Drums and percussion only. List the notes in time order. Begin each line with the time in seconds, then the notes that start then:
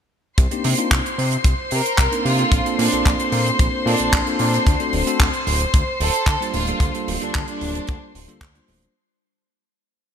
0.38 kick, closed hi-hat
0.51 closed hi-hat
0.64 open hi-hat
0.78 closed hi-hat
0.91 kick, clap, closed hi-hat
1.06 closed hi-hat
1.19 open hi-hat
1.32 closed hi-hat
1.44 kick, closed hi-hat
1.71 open hi-hat
1.86 closed hi-hat
1.98 kick, clap, closed hi-hat
2.12 closed hi-hat
2.26 open hi-hat
2.39 closed hi-hat
2.52 kick, closed hi-hat
2.66 closed hi-hat
2.79 open hi-hat
2.92 closed hi-hat
3.06 kick, clap, closed hi-hat
3.20 closed hi-hat
3.32 open hi-hat
3.46 closed hi-hat
3.59 kick, closed hi-hat
3.87 open hi-hat
3.99 closed hi-hat
4.13 kick, clap, closed hi-hat
4.27 closed hi-hat
4.39 open hi-hat
4.54 closed hi-hat
4.67 kick, closed hi-hat
4.80 closed hi-hat
4.93 open hi-hat
5.07 closed hi-hat
5.20 kick, clap, closed hi-hat
5.33 closed hi-hat
5.47 open hi-hat
5.60 closed hi-hat
5.74 kick, closed hi-hat
6.01 open hi-hat
6.14 closed hi-hat
6.27 kick, clap, closed hi-hat
6.42 closed hi-hat
6.54 open hi-hat
6.67 closed hi-hat
6.80 kick, closed hi-hat
6.95 closed hi-hat
7.08 open hi-hat
7.21 closed hi-hat
7.34 kick, clap, closed hi-hat
7.48 closed hi-hat
7.61 open hi-hat
7.75 closed hi-hat
7.87 kick, closed hi-hat
8.15 open hi-hat
8.29 closed hi-hat
8.41 kick, clap, closed hi-hat
8.55 closed hi-hat
8.68 open hi-hat
8.82 closed hi-hat